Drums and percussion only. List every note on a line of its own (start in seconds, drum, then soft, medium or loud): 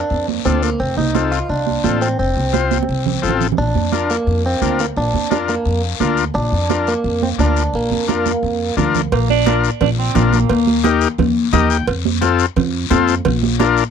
0.10 high conga soft
0.10 long guiro medium
0.28 high conga medium
0.45 high conga medium
0.45 short guiro medium
0.63 short guiro medium
0.80 high conga soft
0.80 long guiro medium
0.98 high conga medium
1.15 high conga medium
1.15 short guiro medium
1.32 short guiro medium
1.49 high conga soft
1.49 long guiro medium
1.67 high conga medium
1.84 high conga medium
1.84 short guiro medium
2.01 short guiro medium
2.19 high conga soft
2.19 long guiro medium
2.54 high conga medium
2.54 short guiro medium
2.71 high conga medium
2.71 short guiro medium
2.83 high conga medium
2.89 long guiro medium
3.06 low conga medium
3.23 short guiro medium
3.29 low conga medium
3.40 low conga medium
3.40 short guiro medium
3.52 low conga medium
3.58 long guiro medium
3.75 high conga medium
3.93 high conga medium
3.93 short guiro medium
4.10 short guiro medium
4.27 high conga soft
4.27 long guiro medium
4.62 high conga medium
4.62 short guiro medium
4.79 short guiro medium
4.97 high conga soft
4.97 long guiro medium
5.14 high conga medium
5.31 high conga medium
5.31 short guiro medium
5.48 short guiro medium
5.65 high conga soft
5.65 long guiro medium
6.00 high conga medium
6.00 short guiro medium
6.17 short guiro medium
6.35 high conga soft
6.35 long guiro medium
6.70 high conga medium
6.70 short guiro medium
6.87 short guiro medium
7.04 high conga soft
7.04 long guiro medium
7.22 high conga medium
7.39 high conga medium
7.39 short guiro medium
7.57 short guiro medium
7.74 high conga soft
7.74 long guiro medium
7.92 high conga medium
8.08 high conga medium
8.08 short guiro medium
8.26 high conga medium
8.26 short guiro medium
8.43 long guiro medium
8.78 low conga medium
8.78 short guiro medium
8.95 low conga medium
8.95 short guiro medium
9.12 cowbell loud
9.12 high conga soft
9.12 long guiro medium
9.30 high conga medium
9.46 cowbell medium
9.46 high conga loud
9.46 short guiro medium
9.64 short guiro medium
9.81 cowbell medium
9.81 high conga soft
9.81 low conga medium
9.81 long guiro medium
10.15 cowbell medium
10.15 high conga medium
10.15 low conga medium
10.15 short guiro medium
10.33 high conga medium
10.33 short guiro medium
10.49 cowbell loud
10.49 high conga soft
10.49 long guiro medium
10.67 high conga medium
10.84 cowbell medium
10.84 high conga loud
10.84 short guiro medium
11.01 short guiro medium
11.18 cowbell medium
11.18 high conga soft
11.18 low conga medium
11.18 long guiro medium
11.53 cowbell medium
11.53 high conga medium
11.53 low conga medium
11.53 short guiro medium
11.70 short guiro medium
11.87 cowbell loud
11.87 high conga soft
11.87 long guiro medium
12.05 high conga medium
12.22 cowbell medium
12.22 high conga medium
12.22 short guiro medium
12.39 short guiro medium
12.56 cowbell medium
12.56 high conga soft
12.56 low conga medium
12.56 long guiro medium
12.91 cowbell medium
12.91 high conga medium
12.91 short guiro medium
13.08 short guiro medium
13.25 cowbell loud
13.25 high conga soft
13.25 low conga medium
13.25 long guiro medium
13.43 high conga medium
13.60 cowbell medium
13.60 high conga loud
13.60 short guiro medium
13.77 short guiro medium